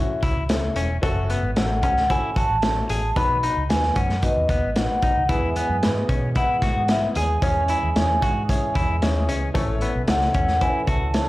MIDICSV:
0, 0, Header, 1, 7, 480
1, 0, Start_track
1, 0, Key_signature, 4, "major"
1, 0, Tempo, 532387
1, 929, Time_signature, 4, 2, 24, 8
1, 10176, End_track
2, 0, Start_track
2, 0, Title_t, "Vibraphone"
2, 0, Program_c, 0, 11
2, 0, Note_on_c, 0, 76, 71
2, 656, Note_off_c, 0, 76, 0
2, 1421, Note_on_c, 0, 78, 77
2, 1647, Note_off_c, 0, 78, 0
2, 1658, Note_on_c, 0, 78, 73
2, 1896, Note_on_c, 0, 80, 95
2, 1901, Note_off_c, 0, 78, 0
2, 2137, Note_on_c, 0, 81, 102
2, 2140, Note_off_c, 0, 80, 0
2, 2856, Note_on_c, 0, 83, 97
2, 2875, Note_off_c, 0, 81, 0
2, 3083, Note_off_c, 0, 83, 0
2, 3094, Note_on_c, 0, 83, 94
2, 3201, Note_off_c, 0, 83, 0
2, 3329, Note_on_c, 0, 80, 90
2, 3565, Note_on_c, 0, 78, 73
2, 3577, Note_off_c, 0, 80, 0
2, 3815, Note_off_c, 0, 78, 0
2, 3816, Note_on_c, 0, 75, 89
2, 4288, Note_on_c, 0, 78, 84
2, 4308, Note_off_c, 0, 75, 0
2, 4769, Note_on_c, 0, 80, 78
2, 4784, Note_off_c, 0, 78, 0
2, 5454, Note_off_c, 0, 80, 0
2, 5744, Note_on_c, 0, 78, 88
2, 6224, Note_on_c, 0, 76, 89
2, 6231, Note_off_c, 0, 78, 0
2, 6329, Note_off_c, 0, 76, 0
2, 6464, Note_on_c, 0, 80, 103
2, 6937, Note_off_c, 0, 80, 0
2, 6948, Note_on_c, 0, 80, 88
2, 8342, Note_off_c, 0, 80, 0
2, 9104, Note_on_c, 0, 78, 84
2, 9338, Note_off_c, 0, 78, 0
2, 9349, Note_on_c, 0, 78, 73
2, 9578, Note_on_c, 0, 80, 91
2, 9585, Note_off_c, 0, 78, 0
2, 9796, Note_off_c, 0, 80, 0
2, 9820, Note_on_c, 0, 81, 92
2, 10176, Note_off_c, 0, 81, 0
2, 10176, End_track
3, 0, Start_track
3, 0, Title_t, "Upright piano"
3, 0, Program_c, 1, 0
3, 0, Note_on_c, 1, 57, 77
3, 0, Note_on_c, 1, 61, 72
3, 0, Note_on_c, 1, 64, 74
3, 0, Note_on_c, 1, 66, 86
3, 273, Note_off_c, 1, 57, 0
3, 275, Note_off_c, 1, 61, 0
3, 276, Note_off_c, 1, 64, 0
3, 277, Note_off_c, 1, 66, 0
3, 447, Note_on_c, 1, 57, 79
3, 449, Note_on_c, 1, 61, 72
3, 456, Note_on_c, 1, 64, 74
3, 457, Note_on_c, 1, 69, 78
3, 754, Note_off_c, 1, 57, 0
3, 755, Note_off_c, 1, 61, 0
3, 759, Note_off_c, 1, 64, 0
3, 759, Note_off_c, 1, 69, 0
3, 920, Note_on_c, 1, 57, 98
3, 922, Note_on_c, 1, 61, 87
3, 925, Note_on_c, 1, 66, 100
3, 927, Note_on_c, 1, 69, 120
3, 1231, Note_off_c, 1, 57, 0
3, 1232, Note_off_c, 1, 61, 0
3, 1234, Note_off_c, 1, 66, 0
3, 1234, Note_off_c, 1, 69, 0
3, 1407, Note_on_c, 1, 57, 62
3, 1409, Note_on_c, 1, 61, 57
3, 1413, Note_on_c, 1, 66, 58
3, 1416, Note_on_c, 1, 69, 69
3, 1715, Note_off_c, 1, 57, 0
3, 1716, Note_off_c, 1, 61, 0
3, 1718, Note_off_c, 1, 66, 0
3, 1719, Note_off_c, 1, 69, 0
3, 1889, Note_on_c, 1, 57, 60
3, 1893, Note_on_c, 1, 61, 63
3, 1896, Note_on_c, 1, 66, 59
3, 1899, Note_on_c, 1, 69, 72
3, 2196, Note_off_c, 1, 57, 0
3, 2198, Note_off_c, 1, 61, 0
3, 2199, Note_off_c, 1, 66, 0
3, 2201, Note_off_c, 1, 69, 0
3, 2372, Note_on_c, 1, 57, 63
3, 2373, Note_on_c, 1, 61, 60
3, 2380, Note_on_c, 1, 66, 62
3, 2382, Note_on_c, 1, 69, 64
3, 2678, Note_off_c, 1, 57, 0
3, 2678, Note_off_c, 1, 61, 0
3, 2682, Note_off_c, 1, 66, 0
3, 2683, Note_off_c, 1, 69, 0
3, 2847, Note_on_c, 1, 63, 79
3, 2849, Note_on_c, 1, 59, 89
3, 2851, Note_on_c, 1, 66, 80
3, 2855, Note_on_c, 1, 71, 92
3, 3156, Note_off_c, 1, 59, 0
3, 3156, Note_off_c, 1, 63, 0
3, 3157, Note_off_c, 1, 66, 0
3, 3159, Note_off_c, 1, 71, 0
3, 3331, Note_on_c, 1, 59, 67
3, 3336, Note_on_c, 1, 63, 59
3, 3338, Note_on_c, 1, 66, 62
3, 3341, Note_on_c, 1, 71, 68
3, 3638, Note_off_c, 1, 59, 0
3, 3640, Note_off_c, 1, 63, 0
3, 3641, Note_off_c, 1, 66, 0
3, 3642, Note_off_c, 1, 71, 0
3, 3811, Note_on_c, 1, 59, 66
3, 3813, Note_on_c, 1, 63, 61
3, 3817, Note_on_c, 1, 71, 75
3, 3818, Note_on_c, 1, 66, 61
3, 4117, Note_off_c, 1, 59, 0
3, 4119, Note_off_c, 1, 63, 0
3, 4121, Note_off_c, 1, 66, 0
3, 4121, Note_off_c, 1, 71, 0
3, 4287, Note_on_c, 1, 59, 60
3, 4291, Note_on_c, 1, 63, 57
3, 4292, Note_on_c, 1, 66, 59
3, 4293, Note_on_c, 1, 71, 71
3, 4596, Note_off_c, 1, 59, 0
3, 4597, Note_off_c, 1, 63, 0
3, 4598, Note_off_c, 1, 66, 0
3, 4598, Note_off_c, 1, 71, 0
3, 4766, Note_on_c, 1, 59, 88
3, 4767, Note_on_c, 1, 64, 85
3, 4769, Note_on_c, 1, 68, 85
3, 4773, Note_on_c, 1, 71, 95
3, 5075, Note_off_c, 1, 59, 0
3, 5075, Note_off_c, 1, 64, 0
3, 5076, Note_off_c, 1, 68, 0
3, 5078, Note_off_c, 1, 71, 0
3, 5247, Note_on_c, 1, 59, 69
3, 5249, Note_on_c, 1, 64, 58
3, 5252, Note_on_c, 1, 68, 62
3, 5254, Note_on_c, 1, 71, 67
3, 5555, Note_off_c, 1, 59, 0
3, 5556, Note_off_c, 1, 64, 0
3, 5558, Note_off_c, 1, 68, 0
3, 5559, Note_off_c, 1, 71, 0
3, 5728, Note_on_c, 1, 59, 65
3, 5730, Note_on_c, 1, 64, 61
3, 5734, Note_on_c, 1, 68, 61
3, 5735, Note_on_c, 1, 71, 74
3, 6036, Note_off_c, 1, 59, 0
3, 6036, Note_off_c, 1, 64, 0
3, 6039, Note_off_c, 1, 68, 0
3, 6039, Note_off_c, 1, 71, 0
3, 6208, Note_on_c, 1, 59, 65
3, 6211, Note_on_c, 1, 64, 59
3, 6213, Note_on_c, 1, 68, 58
3, 6216, Note_on_c, 1, 71, 66
3, 6515, Note_off_c, 1, 59, 0
3, 6517, Note_off_c, 1, 64, 0
3, 6518, Note_off_c, 1, 68, 0
3, 6520, Note_off_c, 1, 71, 0
3, 6687, Note_on_c, 1, 61, 86
3, 6689, Note_on_c, 1, 64, 79
3, 6691, Note_on_c, 1, 68, 82
3, 6696, Note_on_c, 1, 73, 99
3, 6995, Note_off_c, 1, 61, 0
3, 6996, Note_off_c, 1, 64, 0
3, 6997, Note_off_c, 1, 68, 0
3, 6999, Note_off_c, 1, 73, 0
3, 7169, Note_on_c, 1, 61, 65
3, 7175, Note_on_c, 1, 64, 63
3, 7175, Note_on_c, 1, 68, 63
3, 7177, Note_on_c, 1, 73, 73
3, 7476, Note_off_c, 1, 61, 0
3, 7479, Note_off_c, 1, 64, 0
3, 7479, Note_off_c, 1, 68, 0
3, 7480, Note_off_c, 1, 73, 0
3, 7648, Note_on_c, 1, 61, 76
3, 7654, Note_on_c, 1, 64, 74
3, 7654, Note_on_c, 1, 68, 76
3, 7658, Note_on_c, 1, 73, 91
3, 7955, Note_off_c, 1, 61, 0
3, 7958, Note_off_c, 1, 64, 0
3, 7958, Note_off_c, 1, 68, 0
3, 7960, Note_off_c, 1, 73, 0
3, 8128, Note_on_c, 1, 61, 82
3, 8132, Note_on_c, 1, 64, 78
3, 8133, Note_on_c, 1, 68, 69
3, 8134, Note_on_c, 1, 73, 95
3, 8434, Note_off_c, 1, 61, 0
3, 8437, Note_off_c, 1, 64, 0
3, 8437, Note_off_c, 1, 68, 0
3, 8438, Note_off_c, 1, 73, 0
3, 8603, Note_on_c, 1, 61, 102
3, 8604, Note_on_c, 1, 64, 98
3, 8605, Note_on_c, 1, 69, 97
3, 8610, Note_on_c, 1, 73, 117
3, 8912, Note_off_c, 1, 61, 0
3, 8912, Note_off_c, 1, 64, 0
3, 8913, Note_off_c, 1, 69, 0
3, 8915, Note_off_c, 1, 73, 0
3, 9084, Note_on_c, 1, 61, 64
3, 9087, Note_on_c, 1, 64, 68
3, 9088, Note_on_c, 1, 69, 60
3, 9091, Note_on_c, 1, 73, 75
3, 9392, Note_off_c, 1, 61, 0
3, 9393, Note_off_c, 1, 64, 0
3, 9394, Note_off_c, 1, 69, 0
3, 9396, Note_off_c, 1, 73, 0
3, 9567, Note_on_c, 1, 61, 68
3, 9569, Note_on_c, 1, 64, 61
3, 9571, Note_on_c, 1, 69, 64
3, 9573, Note_on_c, 1, 71, 75
3, 9874, Note_off_c, 1, 61, 0
3, 9874, Note_off_c, 1, 64, 0
3, 9875, Note_off_c, 1, 69, 0
3, 9876, Note_off_c, 1, 71, 0
3, 10047, Note_on_c, 1, 64, 63
3, 10048, Note_on_c, 1, 61, 58
3, 10053, Note_on_c, 1, 69, 60
3, 10053, Note_on_c, 1, 73, 72
3, 10176, Note_off_c, 1, 61, 0
3, 10176, Note_off_c, 1, 64, 0
3, 10176, Note_off_c, 1, 69, 0
3, 10176, Note_off_c, 1, 73, 0
3, 10176, End_track
4, 0, Start_track
4, 0, Title_t, "Clean electric guitar"
4, 0, Program_c, 2, 27
4, 207, Note_on_c, 2, 64, 68
4, 387, Note_off_c, 2, 64, 0
4, 688, Note_on_c, 2, 61, 73
4, 868, Note_off_c, 2, 61, 0
4, 930, Note_on_c, 2, 66, 80
4, 1109, Note_off_c, 2, 66, 0
4, 1173, Note_on_c, 2, 59, 75
4, 1352, Note_off_c, 2, 59, 0
4, 1657, Note_on_c, 2, 61, 65
4, 1834, Note_off_c, 2, 61, 0
4, 1895, Note_on_c, 2, 64, 81
4, 2073, Note_off_c, 2, 64, 0
4, 2134, Note_on_c, 2, 66, 64
4, 2312, Note_off_c, 2, 66, 0
4, 2614, Note_on_c, 2, 68, 69
4, 2793, Note_off_c, 2, 68, 0
4, 2857, Note_on_c, 2, 59, 75
4, 3035, Note_off_c, 2, 59, 0
4, 3096, Note_on_c, 2, 63, 75
4, 3274, Note_off_c, 2, 63, 0
4, 3576, Note_on_c, 2, 61, 66
4, 3754, Note_off_c, 2, 61, 0
4, 4055, Note_on_c, 2, 59, 66
4, 4233, Note_off_c, 2, 59, 0
4, 4536, Note_on_c, 2, 63, 70
4, 4714, Note_off_c, 2, 63, 0
4, 4770, Note_on_c, 2, 64, 79
4, 4950, Note_off_c, 2, 64, 0
4, 5017, Note_on_c, 2, 59, 75
4, 5194, Note_off_c, 2, 59, 0
4, 5492, Note_on_c, 2, 61, 67
4, 5672, Note_off_c, 2, 61, 0
4, 5737, Note_on_c, 2, 64, 76
4, 5914, Note_off_c, 2, 64, 0
4, 5978, Note_on_c, 2, 66, 68
4, 6155, Note_off_c, 2, 66, 0
4, 6460, Note_on_c, 2, 68, 69
4, 6636, Note_off_c, 2, 68, 0
4, 6700, Note_on_c, 2, 61, 68
4, 6876, Note_off_c, 2, 61, 0
4, 6939, Note_on_c, 2, 64, 72
4, 7115, Note_off_c, 2, 64, 0
4, 7419, Note_on_c, 2, 66, 74
4, 7595, Note_off_c, 2, 66, 0
4, 7896, Note_on_c, 2, 64, 74
4, 8073, Note_off_c, 2, 64, 0
4, 8374, Note_on_c, 2, 61, 69
4, 8551, Note_off_c, 2, 61, 0
4, 8610, Note_on_c, 2, 57, 80
4, 8789, Note_off_c, 2, 57, 0
4, 8853, Note_on_c, 2, 59, 77
4, 9031, Note_off_c, 2, 59, 0
4, 9330, Note_on_c, 2, 61, 70
4, 9509, Note_off_c, 2, 61, 0
4, 9569, Note_on_c, 2, 64, 78
4, 9748, Note_off_c, 2, 64, 0
4, 9804, Note_on_c, 2, 66, 67
4, 9985, Note_off_c, 2, 66, 0
4, 10176, End_track
5, 0, Start_track
5, 0, Title_t, "Tonewheel organ"
5, 0, Program_c, 3, 16
5, 4772, Note_on_c, 3, 59, 49
5, 4773, Note_on_c, 3, 56, 56
5, 4773, Note_on_c, 3, 68, 62
5, 4774, Note_on_c, 3, 52, 60
5, 6671, Note_off_c, 3, 59, 0
5, 6695, Note_on_c, 3, 61, 58
5, 8573, Note_off_c, 3, 68, 0
5, 8574, Note_off_c, 3, 56, 0
5, 8608, Note_on_c, 3, 69, 65
5, 8615, Note_on_c, 3, 57, 51
5, 10176, Note_off_c, 3, 52, 0
5, 10176, Note_off_c, 3, 57, 0
5, 10176, Note_off_c, 3, 61, 0
5, 10176, Note_off_c, 3, 69, 0
5, 10176, End_track
6, 0, Start_track
6, 0, Title_t, "Fingered electric bass"
6, 0, Program_c, 4, 33
6, 205, Note_on_c, 4, 37, 87
6, 299, Note_off_c, 4, 37, 0
6, 325, Note_on_c, 4, 37, 76
6, 605, Note_off_c, 4, 37, 0
6, 685, Note_on_c, 4, 28, 80
6, 872, Note_off_c, 4, 28, 0
6, 928, Note_on_c, 4, 30, 95
6, 1208, Note_off_c, 4, 30, 0
6, 1287, Note_on_c, 4, 32, 80
6, 1381, Note_off_c, 4, 32, 0
6, 1409, Note_on_c, 4, 33, 83
6, 1649, Note_off_c, 4, 33, 0
6, 1649, Note_on_c, 4, 37, 91
6, 1928, Note_off_c, 4, 37, 0
6, 2130, Note_on_c, 4, 33, 85
6, 2223, Note_off_c, 4, 33, 0
6, 2249, Note_on_c, 4, 33, 82
6, 2529, Note_off_c, 4, 33, 0
6, 2612, Note_on_c, 4, 33, 84
6, 2797, Note_off_c, 4, 33, 0
6, 2850, Note_on_c, 4, 35, 98
6, 3130, Note_off_c, 4, 35, 0
6, 3215, Note_on_c, 4, 37, 76
6, 3306, Note_off_c, 4, 37, 0
6, 3335, Note_on_c, 4, 39, 77
6, 3520, Note_off_c, 4, 39, 0
6, 3569, Note_on_c, 4, 42, 78
6, 3756, Note_off_c, 4, 42, 0
6, 3934, Note_on_c, 4, 39, 78
6, 4026, Note_off_c, 4, 39, 0
6, 4049, Note_on_c, 4, 39, 84
6, 4143, Note_off_c, 4, 39, 0
6, 4177, Note_on_c, 4, 32, 82
6, 4268, Note_off_c, 4, 32, 0
6, 4299, Note_on_c, 4, 33, 84
6, 4389, Note_off_c, 4, 33, 0
6, 4532, Note_on_c, 4, 35, 75
6, 4624, Note_off_c, 4, 35, 0
6, 4652, Note_on_c, 4, 37, 72
6, 4771, Note_on_c, 4, 40, 99
6, 4784, Note_off_c, 4, 37, 0
6, 5050, Note_off_c, 4, 40, 0
6, 5132, Note_on_c, 4, 42, 78
6, 5224, Note_off_c, 4, 42, 0
6, 5253, Note_on_c, 4, 44, 78
6, 5438, Note_off_c, 4, 44, 0
6, 5491, Note_on_c, 4, 47, 84
6, 5770, Note_off_c, 4, 47, 0
6, 5967, Note_on_c, 4, 44, 99
6, 6061, Note_off_c, 4, 44, 0
6, 6090, Note_on_c, 4, 44, 89
6, 6369, Note_off_c, 4, 44, 0
6, 6454, Note_on_c, 4, 39, 83
6, 6638, Note_off_c, 4, 39, 0
6, 6692, Note_on_c, 4, 40, 98
6, 6970, Note_off_c, 4, 40, 0
6, 7059, Note_on_c, 4, 39, 72
6, 7148, Note_off_c, 4, 39, 0
6, 7177, Note_on_c, 4, 40, 89
6, 7360, Note_off_c, 4, 40, 0
6, 7412, Note_on_c, 4, 44, 84
6, 7690, Note_off_c, 4, 44, 0
6, 7894, Note_on_c, 4, 40, 86
6, 7985, Note_off_c, 4, 40, 0
6, 8014, Note_on_c, 4, 40, 79
6, 8105, Note_off_c, 4, 40, 0
6, 8136, Note_on_c, 4, 39, 74
6, 8375, Note_off_c, 4, 39, 0
6, 8375, Note_on_c, 4, 37, 72
6, 8558, Note_off_c, 4, 37, 0
6, 8611, Note_on_c, 4, 33, 104
6, 8889, Note_off_c, 4, 33, 0
6, 8974, Note_on_c, 4, 35, 84
6, 9065, Note_off_c, 4, 35, 0
6, 9089, Note_on_c, 4, 37, 85
6, 9274, Note_off_c, 4, 37, 0
6, 9330, Note_on_c, 4, 40, 93
6, 9608, Note_off_c, 4, 40, 0
6, 9804, Note_on_c, 4, 37, 83
6, 9898, Note_off_c, 4, 37, 0
6, 9932, Note_on_c, 4, 37, 76
6, 10176, Note_off_c, 4, 37, 0
6, 10176, End_track
7, 0, Start_track
7, 0, Title_t, "Drums"
7, 203, Note_on_c, 9, 42, 79
7, 205, Note_on_c, 9, 36, 84
7, 294, Note_off_c, 9, 42, 0
7, 295, Note_off_c, 9, 36, 0
7, 444, Note_on_c, 9, 42, 97
7, 449, Note_on_c, 9, 38, 105
7, 534, Note_off_c, 9, 42, 0
7, 539, Note_off_c, 9, 38, 0
7, 683, Note_on_c, 9, 42, 80
7, 773, Note_off_c, 9, 42, 0
7, 927, Note_on_c, 9, 42, 78
7, 928, Note_on_c, 9, 36, 104
7, 1017, Note_off_c, 9, 42, 0
7, 1019, Note_off_c, 9, 36, 0
7, 1169, Note_on_c, 9, 42, 56
7, 1259, Note_off_c, 9, 42, 0
7, 1409, Note_on_c, 9, 42, 85
7, 1413, Note_on_c, 9, 38, 97
7, 1499, Note_off_c, 9, 42, 0
7, 1503, Note_off_c, 9, 38, 0
7, 1647, Note_on_c, 9, 42, 69
7, 1650, Note_on_c, 9, 36, 84
7, 1737, Note_off_c, 9, 42, 0
7, 1740, Note_off_c, 9, 36, 0
7, 1775, Note_on_c, 9, 38, 30
7, 1865, Note_off_c, 9, 38, 0
7, 1894, Note_on_c, 9, 36, 71
7, 1895, Note_on_c, 9, 42, 68
7, 1984, Note_off_c, 9, 36, 0
7, 1985, Note_off_c, 9, 42, 0
7, 2130, Note_on_c, 9, 36, 83
7, 2134, Note_on_c, 9, 42, 81
7, 2220, Note_off_c, 9, 36, 0
7, 2224, Note_off_c, 9, 42, 0
7, 2366, Note_on_c, 9, 42, 90
7, 2371, Note_on_c, 9, 38, 112
7, 2456, Note_off_c, 9, 42, 0
7, 2461, Note_off_c, 9, 38, 0
7, 2609, Note_on_c, 9, 42, 80
7, 2699, Note_off_c, 9, 42, 0
7, 2851, Note_on_c, 9, 36, 118
7, 2852, Note_on_c, 9, 42, 90
7, 2942, Note_off_c, 9, 36, 0
7, 2942, Note_off_c, 9, 42, 0
7, 3093, Note_on_c, 9, 42, 63
7, 3183, Note_off_c, 9, 42, 0
7, 3336, Note_on_c, 9, 42, 86
7, 3339, Note_on_c, 9, 38, 93
7, 3426, Note_off_c, 9, 42, 0
7, 3430, Note_off_c, 9, 38, 0
7, 3453, Note_on_c, 9, 38, 34
7, 3544, Note_off_c, 9, 38, 0
7, 3568, Note_on_c, 9, 42, 68
7, 3572, Note_on_c, 9, 36, 82
7, 3658, Note_off_c, 9, 42, 0
7, 3662, Note_off_c, 9, 36, 0
7, 3692, Note_on_c, 9, 38, 32
7, 3782, Note_off_c, 9, 38, 0
7, 3810, Note_on_c, 9, 42, 73
7, 3813, Note_on_c, 9, 36, 73
7, 3900, Note_off_c, 9, 42, 0
7, 3903, Note_off_c, 9, 36, 0
7, 4048, Note_on_c, 9, 36, 85
7, 4051, Note_on_c, 9, 42, 78
7, 4139, Note_off_c, 9, 36, 0
7, 4141, Note_off_c, 9, 42, 0
7, 4289, Note_on_c, 9, 42, 88
7, 4294, Note_on_c, 9, 38, 106
7, 4379, Note_off_c, 9, 42, 0
7, 4384, Note_off_c, 9, 38, 0
7, 4528, Note_on_c, 9, 42, 73
7, 4531, Note_on_c, 9, 36, 78
7, 4618, Note_off_c, 9, 42, 0
7, 4621, Note_off_c, 9, 36, 0
7, 4771, Note_on_c, 9, 36, 113
7, 4771, Note_on_c, 9, 42, 82
7, 4861, Note_off_c, 9, 36, 0
7, 4861, Note_off_c, 9, 42, 0
7, 5011, Note_on_c, 9, 42, 62
7, 5102, Note_off_c, 9, 42, 0
7, 5254, Note_on_c, 9, 42, 85
7, 5258, Note_on_c, 9, 38, 90
7, 5345, Note_off_c, 9, 42, 0
7, 5348, Note_off_c, 9, 38, 0
7, 5492, Note_on_c, 9, 36, 91
7, 5492, Note_on_c, 9, 42, 71
7, 5582, Note_off_c, 9, 36, 0
7, 5582, Note_off_c, 9, 42, 0
7, 5729, Note_on_c, 9, 42, 72
7, 5732, Note_on_c, 9, 36, 84
7, 5819, Note_off_c, 9, 42, 0
7, 5822, Note_off_c, 9, 36, 0
7, 5969, Note_on_c, 9, 36, 81
7, 5970, Note_on_c, 9, 42, 72
7, 5972, Note_on_c, 9, 38, 29
7, 6059, Note_off_c, 9, 36, 0
7, 6060, Note_off_c, 9, 42, 0
7, 6063, Note_off_c, 9, 38, 0
7, 6206, Note_on_c, 9, 42, 93
7, 6211, Note_on_c, 9, 38, 101
7, 6296, Note_off_c, 9, 42, 0
7, 6301, Note_off_c, 9, 38, 0
7, 6449, Note_on_c, 9, 42, 80
7, 6539, Note_off_c, 9, 42, 0
7, 6691, Note_on_c, 9, 36, 101
7, 6691, Note_on_c, 9, 42, 89
7, 6781, Note_off_c, 9, 36, 0
7, 6781, Note_off_c, 9, 42, 0
7, 6927, Note_on_c, 9, 42, 69
7, 7017, Note_off_c, 9, 42, 0
7, 7175, Note_on_c, 9, 42, 87
7, 7179, Note_on_c, 9, 38, 98
7, 7266, Note_off_c, 9, 42, 0
7, 7269, Note_off_c, 9, 38, 0
7, 7414, Note_on_c, 9, 36, 84
7, 7414, Note_on_c, 9, 42, 70
7, 7504, Note_off_c, 9, 36, 0
7, 7504, Note_off_c, 9, 42, 0
7, 7655, Note_on_c, 9, 36, 78
7, 7659, Note_on_c, 9, 42, 72
7, 7746, Note_off_c, 9, 36, 0
7, 7749, Note_off_c, 9, 42, 0
7, 7892, Note_on_c, 9, 36, 80
7, 7897, Note_on_c, 9, 42, 76
7, 7982, Note_off_c, 9, 36, 0
7, 7987, Note_off_c, 9, 42, 0
7, 8134, Note_on_c, 9, 42, 92
7, 8138, Note_on_c, 9, 38, 94
7, 8224, Note_off_c, 9, 42, 0
7, 8229, Note_off_c, 9, 38, 0
7, 8374, Note_on_c, 9, 42, 74
7, 8464, Note_off_c, 9, 42, 0
7, 8611, Note_on_c, 9, 36, 110
7, 8611, Note_on_c, 9, 42, 93
7, 8701, Note_off_c, 9, 36, 0
7, 8701, Note_off_c, 9, 42, 0
7, 8845, Note_on_c, 9, 42, 61
7, 8935, Note_off_c, 9, 42, 0
7, 9084, Note_on_c, 9, 42, 88
7, 9087, Note_on_c, 9, 38, 94
7, 9174, Note_off_c, 9, 42, 0
7, 9178, Note_off_c, 9, 38, 0
7, 9205, Note_on_c, 9, 38, 31
7, 9295, Note_off_c, 9, 38, 0
7, 9324, Note_on_c, 9, 42, 67
7, 9328, Note_on_c, 9, 36, 83
7, 9414, Note_off_c, 9, 42, 0
7, 9418, Note_off_c, 9, 36, 0
7, 9447, Note_on_c, 9, 38, 29
7, 9537, Note_off_c, 9, 38, 0
7, 9566, Note_on_c, 9, 42, 75
7, 9569, Note_on_c, 9, 36, 81
7, 9656, Note_off_c, 9, 42, 0
7, 9659, Note_off_c, 9, 36, 0
7, 9803, Note_on_c, 9, 42, 79
7, 9804, Note_on_c, 9, 36, 78
7, 9893, Note_off_c, 9, 42, 0
7, 9895, Note_off_c, 9, 36, 0
7, 10043, Note_on_c, 9, 42, 87
7, 10048, Note_on_c, 9, 38, 106
7, 10133, Note_off_c, 9, 42, 0
7, 10138, Note_off_c, 9, 38, 0
7, 10176, End_track
0, 0, End_of_file